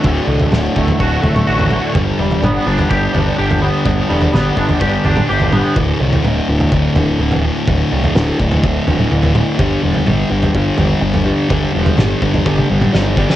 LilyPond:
<<
  \new Staff \with { instrumentName = "Clean electric guitar" } { \time 4/4 \key g \lydian \tempo 4 = 126 <d, d a fis'>8 a,8 d8 a8 fis'8 a8 fis'8 d8 | g,8 g8 b8 d'8 g'8 d'8 g'8 b8 | g,8 g8 b8 d'8 g'8 d'8 g'8 b8 | r1 |
r1 | r1 | r1 | }
  \new Staff \with { instrumentName = "Distorted electric guitar" } { \clef bass \time 4/4 \key g \lydian <d, a, d>8 <d, a, d>8 <d, a, d>8 <d, a, d>8 <d, a, d>8 <d, a, d>8 <d, a, d>8 <d, a, d>8 | <g, d g>8 <g, d g>8 <g, d g>8 <g, d g>8 <g, d g>8 <g, d g>8 <g, d g>8 <g, d g>8 | <g, d g>8 <g, d g>8 <g, d g>8 <g, d g>8 <g, d g>8 <g, d g>8 <g, d g>8 <g, d g>8 | <d, a, d>8 <d, a, d>8 <d, a, d>8 <d, a, d>8 <d, a, d>8 <d, a, d>8 <d, a, d>8 <d, a, d>8 |
<d, a, d>8 <d, a, d>8 <d, a, d>8 <d, a, d>8 <d, a, d>8 <d, a, d>8 <d, a, d>8 <d, a, d>8 | <g, d g>8 <g, d g>8 <g, d g>8 <g, d g>8 <g, d g>8 <g, d g>8 <g, d g>8 <g, d g>8 | <g, d g>8 <g, d g>8 <g, d g>8 <g, d g>8 <g, d g>8 <g, d g>8 <g, d g>8 <g, d g>8 | }
  \new Staff \with { instrumentName = "Picked electric bass" } { \clef bass \time 4/4 \key g \lydian d,,8 c,8 d,,8 d,,8 d,,8 d,,8 a,,4 | g,,8 e,,8 g,,8 g,,8 g,,8 g,,8 g,,4 | g,,8 e,,8 g,,8 g,,8 g,,8 g,,8 g,,4 | d,,8 c,8 d,,8 d,,8 d,,8 d,,8 d,,4 |
d,,8 c,8 d,,8 d,,8 d,,8 d,,8 d,,4 | g,,8 e,,8 g,,8 g,,8 g,,8 g,,8 g,,4 | g,,8 e,,8 g,,8 g,,8 g,,8 g,,8 g,,4 | }
  \new DrumStaff \with { instrumentName = "Drums" } \drummode { \time 4/4 <bd tomfh>8. tomfh16 <sn toml>8 bd16 tomfh16 bd8 tomfh16 toml16 r16 tomfh16 toml8 | <bd tomfh>8. tomfh16 toml8. tomfh16 bd8 tomfh8 r16 tomfh8. | <bd tomfh>8. tomfh16 <sn toml>8 bd16 tomfh16 bd8 tomfh16 toml16 r16 tomfh16 toml8 | <bd tomfh>8. tomfh16 toml8. tomfh16 bd8 tomfh8 r16 tomfh8. |
<bd tomfh>8. tomfh16 <sn toml>8 bd16 tomfh16 bd8 tomfh16 toml16 r16 tomfh16 toml8 | <bd tomfh>8. tomfh16 toml8. tomfh16 bd8 tomfh8 r16 tomfh8. | <bd tomfh>8. tomfh16 <sn toml>8 bd16 tomfh16 bd16 tommh8 toml16 sn8 bd16 sn16 | }
>>